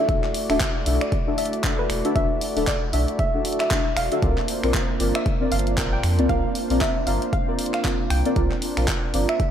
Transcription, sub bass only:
0, 0, Header, 1, 2, 480
1, 0, Start_track
1, 0, Tempo, 517241
1, 81, Time_signature, 4, 2, 24, 8
1, 8823, End_track
2, 0, Start_track
2, 0, Title_t, "Sub bass"
2, 0, Program_c, 0, 38
2, 81, Note_on_c, 0, 28, 103
2, 195, Note_off_c, 0, 28, 0
2, 461, Note_on_c, 0, 26, 85
2, 542, Note_off_c, 0, 26, 0
2, 801, Note_on_c, 0, 35, 101
2, 915, Note_off_c, 0, 35, 0
2, 1761, Note_on_c, 0, 28, 88
2, 1875, Note_off_c, 0, 28, 0
2, 2001, Note_on_c, 0, 28, 100
2, 2114, Note_off_c, 0, 28, 0
2, 2382, Note_on_c, 0, 26, 87
2, 2462, Note_off_c, 0, 26, 0
2, 2721, Note_on_c, 0, 35, 98
2, 2835, Note_off_c, 0, 35, 0
2, 3680, Note_on_c, 0, 28, 91
2, 3794, Note_off_c, 0, 28, 0
2, 3921, Note_on_c, 0, 36, 103
2, 4035, Note_off_c, 0, 36, 0
2, 4301, Note_on_c, 0, 34, 86
2, 4382, Note_off_c, 0, 34, 0
2, 4640, Note_on_c, 0, 31, 103
2, 4754, Note_off_c, 0, 31, 0
2, 5120, Note_on_c, 0, 31, 82
2, 5570, Note_off_c, 0, 31, 0
2, 5600, Note_on_c, 0, 41, 82
2, 5740, Note_on_c, 0, 36, 88
2, 5754, Note_off_c, 0, 41, 0
2, 5821, Note_off_c, 0, 36, 0
2, 5841, Note_on_c, 0, 36, 100
2, 5955, Note_off_c, 0, 36, 0
2, 6220, Note_on_c, 0, 34, 84
2, 6301, Note_off_c, 0, 34, 0
2, 6560, Note_on_c, 0, 31, 98
2, 6674, Note_off_c, 0, 31, 0
2, 7519, Note_on_c, 0, 36, 89
2, 7634, Note_off_c, 0, 36, 0
2, 7761, Note_on_c, 0, 36, 103
2, 7875, Note_off_c, 0, 36, 0
2, 8141, Note_on_c, 0, 34, 84
2, 8222, Note_off_c, 0, 34, 0
2, 8480, Note_on_c, 0, 31, 99
2, 8594, Note_off_c, 0, 31, 0
2, 8823, End_track
0, 0, End_of_file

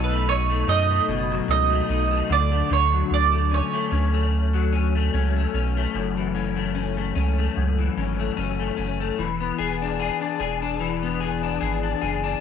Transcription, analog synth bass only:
0, 0, Header, 1, 2, 480
1, 0, Start_track
1, 0, Key_signature, 3, "minor"
1, 0, Tempo, 810811
1, 1603, Time_signature, 4, 2, 24, 8
1, 7343, End_track
2, 0, Start_track
2, 0, Title_t, "Analog synth bass"
2, 0, Program_c, 0, 38
2, 0, Note_on_c, 0, 35, 89
2, 378, Note_off_c, 0, 35, 0
2, 401, Note_on_c, 0, 42, 86
2, 594, Note_off_c, 0, 42, 0
2, 641, Note_on_c, 0, 30, 91
2, 833, Note_off_c, 0, 30, 0
2, 880, Note_on_c, 0, 37, 85
2, 1073, Note_off_c, 0, 37, 0
2, 1121, Note_on_c, 0, 35, 100
2, 1314, Note_off_c, 0, 35, 0
2, 1361, Note_on_c, 0, 38, 86
2, 1554, Note_off_c, 0, 38, 0
2, 1602, Note_on_c, 0, 38, 103
2, 1794, Note_off_c, 0, 38, 0
2, 1840, Note_on_c, 0, 38, 98
2, 2139, Note_off_c, 0, 38, 0
2, 2321, Note_on_c, 0, 38, 81
2, 3018, Note_off_c, 0, 38, 0
2, 3042, Note_on_c, 0, 37, 100
2, 3234, Note_off_c, 0, 37, 0
2, 3279, Note_on_c, 0, 35, 82
2, 3472, Note_off_c, 0, 35, 0
2, 3521, Note_on_c, 0, 30, 92
2, 4217, Note_off_c, 0, 30, 0
2, 4239, Note_on_c, 0, 37, 89
2, 4432, Note_off_c, 0, 37, 0
2, 4481, Note_on_c, 0, 37, 83
2, 4673, Note_off_c, 0, 37, 0
2, 4720, Note_on_c, 0, 32, 86
2, 4912, Note_off_c, 0, 32, 0
2, 4961, Note_on_c, 0, 30, 92
2, 5153, Note_off_c, 0, 30, 0
2, 5201, Note_on_c, 0, 30, 76
2, 5393, Note_off_c, 0, 30, 0
2, 5442, Note_on_c, 0, 28, 97
2, 5633, Note_off_c, 0, 28, 0
2, 5682, Note_on_c, 0, 28, 91
2, 5979, Note_off_c, 0, 28, 0
2, 6159, Note_on_c, 0, 28, 102
2, 6855, Note_off_c, 0, 28, 0
2, 6879, Note_on_c, 0, 32, 100
2, 7070, Note_off_c, 0, 32, 0
2, 7119, Note_on_c, 0, 30, 82
2, 7310, Note_off_c, 0, 30, 0
2, 7343, End_track
0, 0, End_of_file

